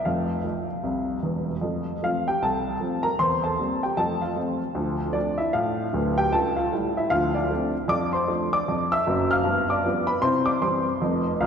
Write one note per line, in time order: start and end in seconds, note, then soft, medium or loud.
0.05 0.39 F1 medium
0.05 0.39 F2 medium
0.05 1.47 F5 medium
0.44 0.66 F3 soft
0.44 0.65 A3 soft
0.44 0.66 A4 soft
0.83 1.17 C2 medium
0.83 1.17 C3 medium
1.23 1.54 E1 medium
1.23 1.54 E2 medium
1.61 1.95 F2 medium
1.61 1.85 A3 soft
2.03 2.24 F3 soft
2.03 2.24 A3 soft
2.03 2.25 C4 soft
2.03 2.25 F4 medium
2.03 2.26 F5 medium
2.28 2.41 G4 medium
2.28 2.42 G5 medium
2.42 2.75 C2 medium
2.42 3.01 A4 medium
2.42 3.05 A5 medium
2.80 3.02 F3 soft
2.80 3.02 A3 soft
2.80 3.02 C4 soft
3.03 3.18 A#4 medium
3.03 3.19 A#5 medium
3.19 3.53 E2 medium
3.19 3.42 C5 medium
3.19 3.43 C6 loud
3.44 3.80 A4 medium
3.44 3.82 A5 medium
3.59 3.80 G3 soft
3.59 3.80 A#3 soft
3.59 3.81 C4 soft
3.83 3.98 G4 medium
3.83 3.98 G5 medium
3.97 4.31 F2 medium
3.97 4.21 A3 medium
3.97 4.21 A4 medium
3.97 4.21 A5 loud
4.22 4.59 F4 medium
4.22 4.61 F5 medium
4.36 4.58 F3 soft
4.36 4.58 A3 soft
4.36 4.58 C4 medium
4.75 5.09 D2 medium
4.75 4.98 F3 medium
5.12 5.35 F3 soft
5.12 5.35 A3 soft
5.12 5.37 D4 medium
5.12 5.38 D5 medium
5.38 5.53 E4 medium
5.38 5.54 E5 medium
5.53 5.87 A2 medium
5.53 6.13 F4 medium
5.53 6.16 F5 medium
5.93 6.25 D1 medium
5.93 6.25 D2 medium
6.18 6.32 G4 medium
6.18 6.33 G5 loud
6.32 6.66 C#2 medium
6.32 6.55 A4 medium
6.32 6.56 A5 loud
6.56 6.94 F4 medium
6.56 6.95 F5 medium
6.72 6.94 G3 soft
6.72 6.94 A3 soft
6.72 6.94 E4 medium
6.97 7.11 E4 medium
6.97 7.12 E5 medium
7.10 7.44 D2 medium
7.10 7.34 F3 medium
7.10 7.33 F4 medium
7.10 7.34 F5 loud
7.35 7.72 D4 medium
7.35 7.74 D5 medium
7.51 7.72 F3 soft
7.51 7.72 A3 medium
7.51 7.73 C4 medium
7.88 8.22 F2 medium
7.88 8.11 D5 medium
7.88 8.13 D6 loud
8.13 8.50 C5 medium
8.13 8.52 C6 medium
8.28 8.50 F3 medium
8.28 8.50 A3 medium
8.28 8.50 D4 medium
8.53 8.89 D5 medium
8.53 8.91 D6 loud
8.68 9.01 F2 medium
8.92 9.28 E5 medium
8.92 9.30 E6 loud
9.07 9.38 F#1 medium
9.07 9.38 F#2 medium
9.31 9.68 F5 medium
9.31 9.69 F6 loud
9.44 9.78 G2 medium
9.44 9.68 B3 medium
9.70 10.07 D5 medium
9.70 10.09 D6 medium
9.85 10.06 F3 medium
9.85 10.06 G3 medium
9.85 10.07 B3 medium
10.07 10.23 B4 medium
10.07 10.23 B5 loud
10.21 10.56 C3 loud
10.21 10.46 E4 medium
10.21 10.45 C5 medium
10.21 10.46 C6 loud
10.46 10.61 D5 medium
10.46 10.62 D6 medium
10.61 10.83 E3 medium
10.61 10.84 G3 medium
10.61 10.84 C4 medium
10.61 10.99 C5 medium
10.61 11.01 C6 medium
11.02 11.33 F1 medium
11.02 11.33 F2 medium
11.40 11.47 C1 medium
11.40 11.47 C2 medium
11.40 11.47 F4 medium
11.40 11.47 F5 medium